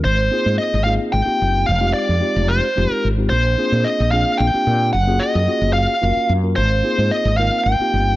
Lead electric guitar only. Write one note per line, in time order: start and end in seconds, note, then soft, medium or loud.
0.04 0.55 C5 medium
0.58 0.84 D#5 medium
0.84 0.92 F5 medium
1.12 1.69 G5 loud
1.66 1.93 F5 loud
1.93 2.50 D5 medium
2.49 2.93 C5 medium
2.93 3.06 A#4 medium
3.29 3.86 C5 medium
3.84 4.11 D#5 medium
4.11 4.40 F5 loud
4.38 4.89 G5 loud
4.93 5.21 F#5 loud
5.20 5.73 D#5 medium
5.73 6.32 F5 medium
6.56 7.13 C5 medium
7.11 7.37 D#5 medium
7.37 7.66 F5 medium
7.64 8.15 G5 loud